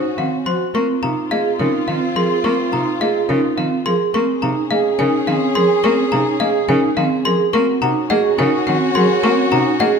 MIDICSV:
0, 0, Header, 1, 7, 480
1, 0, Start_track
1, 0, Tempo, 566038
1, 632, Time_signature, 3, 2, 24, 8
1, 8476, End_track
2, 0, Start_track
2, 0, Title_t, "Xylophone"
2, 0, Program_c, 0, 13
2, 153, Note_on_c, 0, 77, 65
2, 309, Note_off_c, 0, 77, 0
2, 392, Note_on_c, 0, 84, 85
2, 548, Note_off_c, 0, 84, 0
2, 635, Note_on_c, 0, 85, 71
2, 789, Note_off_c, 0, 85, 0
2, 871, Note_on_c, 0, 82, 74
2, 1028, Note_off_c, 0, 82, 0
2, 1112, Note_on_c, 0, 77, 91
2, 1268, Note_off_c, 0, 77, 0
2, 1592, Note_on_c, 0, 77, 69
2, 1748, Note_off_c, 0, 77, 0
2, 1833, Note_on_c, 0, 84, 89
2, 1989, Note_off_c, 0, 84, 0
2, 2072, Note_on_c, 0, 85, 73
2, 2228, Note_off_c, 0, 85, 0
2, 2314, Note_on_c, 0, 82, 76
2, 2469, Note_off_c, 0, 82, 0
2, 2553, Note_on_c, 0, 77, 98
2, 2708, Note_off_c, 0, 77, 0
2, 3032, Note_on_c, 0, 77, 73
2, 3188, Note_off_c, 0, 77, 0
2, 3271, Note_on_c, 0, 84, 97
2, 3428, Note_off_c, 0, 84, 0
2, 3512, Note_on_c, 0, 85, 70
2, 3668, Note_off_c, 0, 85, 0
2, 3750, Note_on_c, 0, 82, 76
2, 3907, Note_off_c, 0, 82, 0
2, 3990, Note_on_c, 0, 77, 94
2, 4147, Note_off_c, 0, 77, 0
2, 4230, Note_on_c, 0, 80, 83
2, 4387, Note_off_c, 0, 80, 0
2, 4472, Note_on_c, 0, 77, 80
2, 4628, Note_off_c, 0, 77, 0
2, 4709, Note_on_c, 0, 84, 105
2, 4867, Note_off_c, 0, 84, 0
2, 4950, Note_on_c, 0, 85, 78
2, 5107, Note_off_c, 0, 85, 0
2, 5189, Note_on_c, 0, 82, 86
2, 5347, Note_off_c, 0, 82, 0
2, 5427, Note_on_c, 0, 77, 101
2, 5586, Note_off_c, 0, 77, 0
2, 5670, Note_on_c, 0, 80, 86
2, 5827, Note_off_c, 0, 80, 0
2, 5909, Note_on_c, 0, 77, 88
2, 6067, Note_off_c, 0, 77, 0
2, 6150, Note_on_c, 0, 84, 111
2, 6308, Note_off_c, 0, 84, 0
2, 6388, Note_on_c, 0, 85, 87
2, 6547, Note_off_c, 0, 85, 0
2, 6629, Note_on_c, 0, 82, 90
2, 6787, Note_off_c, 0, 82, 0
2, 6869, Note_on_c, 0, 78, 110
2, 7027, Note_off_c, 0, 78, 0
2, 7112, Note_on_c, 0, 80, 93
2, 7268, Note_off_c, 0, 80, 0
2, 7351, Note_on_c, 0, 78, 81
2, 7508, Note_off_c, 0, 78, 0
2, 7591, Note_on_c, 0, 84, 118
2, 7748, Note_off_c, 0, 84, 0
2, 7832, Note_on_c, 0, 85, 81
2, 7988, Note_off_c, 0, 85, 0
2, 8072, Note_on_c, 0, 82, 92
2, 8228, Note_off_c, 0, 82, 0
2, 8311, Note_on_c, 0, 78, 112
2, 8468, Note_off_c, 0, 78, 0
2, 8476, End_track
3, 0, Start_track
3, 0, Title_t, "Marimba"
3, 0, Program_c, 1, 12
3, 154, Note_on_c, 1, 78, 68
3, 309, Note_off_c, 1, 78, 0
3, 395, Note_on_c, 1, 72, 68
3, 549, Note_off_c, 1, 72, 0
3, 634, Note_on_c, 1, 70, 90
3, 789, Note_off_c, 1, 70, 0
3, 873, Note_on_c, 1, 77, 80
3, 1028, Note_off_c, 1, 77, 0
3, 1116, Note_on_c, 1, 75, 73
3, 1269, Note_off_c, 1, 75, 0
3, 1353, Note_on_c, 1, 70, 86
3, 1508, Note_off_c, 1, 70, 0
3, 1592, Note_on_c, 1, 77, 70
3, 1748, Note_off_c, 1, 77, 0
3, 1833, Note_on_c, 1, 70, 75
3, 1988, Note_off_c, 1, 70, 0
3, 2070, Note_on_c, 1, 70, 93
3, 2228, Note_off_c, 1, 70, 0
3, 2308, Note_on_c, 1, 77, 75
3, 2467, Note_off_c, 1, 77, 0
3, 2552, Note_on_c, 1, 75, 75
3, 2708, Note_off_c, 1, 75, 0
3, 2790, Note_on_c, 1, 70, 89
3, 2947, Note_off_c, 1, 70, 0
3, 3033, Note_on_c, 1, 77, 76
3, 3188, Note_off_c, 1, 77, 0
3, 3275, Note_on_c, 1, 70, 76
3, 3429, Note_off_c, 1, 70, 0
3, 3514, Note_on_c, 1, 70, 99
3, 3669, Note_off_c, 1, 70, 0
3, 3755, Note_on_c, 1, 77, 82
3, 3909, Note_off_c, 1, 77, 0
3, 3997, Note_on_c, 1, 75, 79
3, 4150, Note_off_c, 1, 75, 0
3, 4236, Note_on_c, 1, 70, 94
3, 4390, Note_off_c, 1, 70, 0
3, 4476, Note_on_c, 1, 77, 85
3, 4630, Note_off_c, 1, 77, 0
3, 4714, Note_on_c, 1, 70, 78
3, 4869, Note_off_c, 1, 70, 0
3, 4953, Note_on_c, 1, 70, 106
3, 5108, Note_off_c, 1, 70, 0
3, 5190, Note_on_c, 1, 77, 81
3, 5347, Note_off_c, 1, 77, 0
3, 5433, Note_on_c, 1, 75, 84
3, 5588, Note_off_c, 1, 75, 0
3, 5670, Note_on_c, 1, 70, 93
3, 5827, Note_off_c, 1, 70, 0
3, 5911, Note_on_c, 1, 77, 88
3, 6068, Note_off_c, 1, 77, 0
3, 6152, Note_on_c, 1, 70, 86
3, 6308, Note_off_c, 1, 70, 0
3, 6390, Note_on_c, 1, 70, 113
3, 6547, Note_off_c, 1, 70, 0
3, 6633, Note_on_c, 1, 78, 90
3, 6788, Note_off_c, 1, 78, 0
3, 6869, Note_on_c, 1, 75, 90
3, 7027, Note_off_c, 1, 75, 0
3, 7114, Note_on_c, 1, 70, 101
3, 7269, Note_off_c, 1, 70, 0
3, 7351, Note_on_c, 1, 78, 89
3, 7508, Note_off_c, 1, 78, 0
3, 7593, Note_on_c, 1, 70, 85
3, 7749, Note_off_c, 1, 70, 0
3, 7831, Note_on_c, 1, 70, 110
3, 7988, Note_off_c, 1, 70, 0
3, 8069, Note_on_c, 1, 78, 94
3, 8227, Note_off_c, 1, 78, 0
3, 8306, Note_on_c, 1, 75, 90
3, 8466, Note_off_c, 1, 75, 0
3, 8476, End_track
4, 0, Start_track
4, 0, Title_t, "Clarinet"
4, 0, Program_c, 2, 71
4, 0, Note_on_c, 2, 66, 82
4, 480, Note_off_c, 2, 66, 0
4, 635, Note_on_c, 2, 65, 80
4, 3360, Note_off_c, 2, 65, 0
4, 3509, Note_on_c, 2, 68, 85
4, 6237, Note_off_c, 2, 68, 0
4, 6388, Note_on_c, 2, 66, 90
4, 8476, Note_off_c, 2, 66, 0
4, 8476, End_track
5, 0, Start_track
5, 0, Title_t, "String section"
5, 0, Program_c, 3, 48
5, 0, Note_on_c, 3, 61, 87
5, 0, Note_on_c, 3, 66, 83
5, 476, Note_off_c, 3, 66, 0
5, 477, Note_off_c, 3, 61, 0
5, 631, Note_on_c, 3, 60, 76
5, 631, Note_on_c, 3, 65, 77
5, 3357, Note_off_c, 3, 60, 0
5, 3358, Note_off_c, 3, 65, 0
5, 3510, Note_on_c, 3, 68, 81
5, 3511, Note_on_c, 3, 61, 85
5, 6237, Note_off_c, 3, 68, 0
5, 6238, Note_off_c, 3, 61, 0
5, 6386, Note_on_c, 3, 61, 94
5, 6387, Note_on_c, 3, 66, 92
5, 8476, Note_off_c, 3, 61, 0
5, 8476, Note_off_c, 3, 66, 0
5, 8476, End_track
6, 0, Start_track
6, 0, Title_t, "Vibraphone"
6, 0, Program_c, 4, 11
6, 152, Note_on_c, 4, 60, 68
6, 308, Note_off_c, 4, 60, 0
6, 390, Note_on_c, 4, 66, 86
6, 547, Note_off_c, 4, 66, 0
6, 631, Note_on_c, 4, 60, 73
6, 788, Note_off_c, 4, 60, 0
6, 872, Note_on_c, 4, 63, 70
6, 1028, Note_off_c, 4, 63, 0
6, 1114, Note_on_c, 4, 68, 89
6, 1269, Note_off_c, 4, 68, 0
6, 1352, Note_on_c, 4, 63, 77
6, 1508, Note_off_c, 4, 63, 0
6, 1592, Note_on_c, 4, 60, 74
6, 1748, Note_off_c, 4, 60, 0
6, 1831, Note_on_c, 4, 68, 89
6, 1988, Note_off_c, 4, 68, 0
6, 2070, Note_on_c, 4, 60, 74
6, 2227, Note_off_c, 4, 60, 0
6, 2311, Note_on_c, 4, 63, 70
6, 2468, Note_off_c, 4, 63, 0
6, 2551, Note_on_c, 4, 68, 96
6, 2708, Note_off_c, 4, 68, 0
6, 2792, Note_on_c, 4, 63, 81
6, 2948, Note_off_c, 4, 63, 0
6, 3031, Note_on_c, 4, 60, 74
6, 3188, Note_off_c, 4, 60, 0
6, 3272, Note_on_c, 4, 68, 98
6, 3428, Note_off_c, 4, 68, 0
6, 3511, Note_on_c, 4, 60, 76
6, 3668, Note_off_c, 4, 60, 0
6, 3751, Note_on_c, 4, 63, 77
6, 3908, Note_off_c, 4, 63, 0
6, 3989, Note_on_c, 4, 68, 94
6, 4147, Note_off_c, 4, 68, 0
6, 4232, Note_on_c, 4, 63, 83
6, 4388, Note_off_c, 4, 63, 0
6, 4474, Note_on_c, 4, 60, 79
6, 4629, Note_off_c, 4, 60, 0
6, 4711, Note_on_c, 4, 68, 99
6, 4868, Note_off_c, 4, 68, 0
6, 4951, Note_on_c, 4, 60, 77
6, 5108, Note_off_c, 4, 60, 0
6, 5193, Note_on_c, 4, 63, 81
6, 5348, Note_off_c, 4, 63, 0
6, 5430, Note_on_c, 4, 68, 104
6, 5587, Note_off_c, 4, 68, 0
6, 5671, Note_on_c, 4, 63, 91
6, 5828, Note_off_c, 4, 63, 0
6, 5911, Note_on_c, 4, 60, 84
6, 6068, Note_off_c, 4, 60, 0
6, 6149, Note_on_c, 4, 68, 101
6, 6307, Note_off_c, 4, 68, 0
6, 6390, Note_on_c, 4, 60, 81
6, 6547, Note_off_c, 4, 60, 0
6, 6627, Note_on_c, 4, 63, 85
6, 6786, Note_off_c, 4, 63, 0
6, 6870, Note_on_c, 4, 68, 115
6, 7027, Note_off_c, 4, 68, 0
6, 7109, Note_on_c, 4, 63, 87
6, 7267, Note_off_c, 4, 63, 0
6, 7351, Note_on_c, 4, 60, 80
6, 7508, Note_off_c, 4, 60, 0
6, 7591, Note_on_c, 4, 68, 102
6, 7748, Note_off_c, 4, 68, 0
6, 7830, Note_on_c, 4, 60, 84
6, 7987, Note_off_c, 4, 60, 0
6, 8071, Note_on_c, 4, 63, 89
6, 8228, Note_off_c, 4, 63, 0
6, 8312, Note_on_c, 4, 68, 108
6, 8468, Note_off_c, 4, 68, 0
6, 8476, End_track
7, 0, Start_track
7, 0, Title_t, "Cello"
7, 0, Program_c, 5, 42
7, 148, Note_on_c, 5, 51, 70
7, 240, Note_off_c, 5, 51, 0
7, 388, Note_on_c, 5, 53, 67
7, 480, Note_off_c, 5, 53, 0
7, 629, Note_on_c, 5, 58, 89
7, 720, Note_off_c, 5, 58, 0
7, 871, Note_on_c, 5, 48, 72
7, 961, Note_off_c, 5, 48, 0
7, 1111, Note_on_c, 5, 58, 75
7, 1201, Note_off_c, 5, 58, 0
7, 1353, Note_on_c, 5, 49, 94
7, 1442, Note_off_c, 5, 49, 0
7, 1592, Note_on_c, 5, 51, 74
7, 1682, Note_off_c, 5, 51, 0
7, 1827, Note_on_c, 5, 53, 76
7, 1919, Note_off_c, 5, 53, 0
7, 2069, Note_on_c, 5, 58, 91
7, 2160, Note_off_c, 5, 58, 0
7, 2311, Note_on_c, 5, 48, 75
7, 2401, Note_off_c, 5, 48, 0
7, 2551, Note_on_c, 5, 58, 79
7, 2641, Note_off_c, 5, 58, 0
7, 2791, Note_on_c, 5, 49, 104
7, 2882, Note_off_c, 5, 49, 0
7, 3031, Note_on_c, 5, 51, 75
7, 3121, Note_off_c, 5, 51, 0
7, 3271, Note_on_c, 5, 53, 80
7, 3361, Note_off_c, 5, 53, 0
7, 3512, Note_on_c, 5, 58, 94
7, 3602, Note_off_c, 5, 58, 0
7, 3753, Note_on_c, 5, 48, 78
7, 3843, Note_off_c, 5, 48, 0
7, 3992, Note_on_c, 5, 58, 78
7, 4082, Note_off_c, 5, 58, 0
7, 4230, Note_on_c, 5, 49, 106
7, 4321, Note_off_c, 5, 49, 0
7, 4471, Note_on_c, 5, 51, 82
7, 4562, Note_off_c, 5, 51, 0
7, 4711, Note_on_c, 5, 53, 83
7, 4801, Note_off_c, 5, 53, 0
7, 4950, Note_on_c, 5, 58, 98
7, 5041, Note_off_c, 5, 58, 0
7, 5191, Note_on_c, 5, 48, 85
7, 5282, Note_off_c, 5, 48, 0
7, 5429, Note_on_c, 5, 58, 79
7, 5520, Note_off_c, 5, 58, 0
7, 5668, Note_on_c, 5, 49, 110
7, 5759, Note_off_c, 5, 49, 0
7, 5909, Note_on_c, 5, 51, 87
7, 6000, Note_off_c, 5, 51, 0
7, 6151, Note_on_c, 5, 53, 83
7, 6242, Note_off_c, 5, 53, 0
7, 6391, Note_on_c, 5, 58, 101
7, 6481, Note_off_c, 5, 58, 0
7, 6628, Note_on_c, 5, 48, 86
7, 6720, Note_off_c, 5, 48, 0
7, 6869, Note_on_c, 5, 58, 94
7, 6960, Note_off_c, 5, 58, 0
7, 7109, Note_on_c, 5, 49, 111
7, 7200, Note_off_c, 5, 49, 0
7, 7351, Note_on_c, 5, 51, 89
7, 7442, Note_off_c, 5, 51, 0
7, 7592, Note_on_c, 5, 54, 91
7, 7682, Note_off_c, 5, 54, 0
7, 7831, Note_on_c, 5, 58, 101
7, 7921, Note_off_c, 5, 58, 0
7, 8069, Note_on_c, 5, 48, 88
7, 8160, Note_off_c, 5, 48, 0
7, 8310, Note_on_c, 5, 58, 95
7, 8401, Note_off_c, 5, 58, 0
7, 8476, End_track
0, 0, End_of_file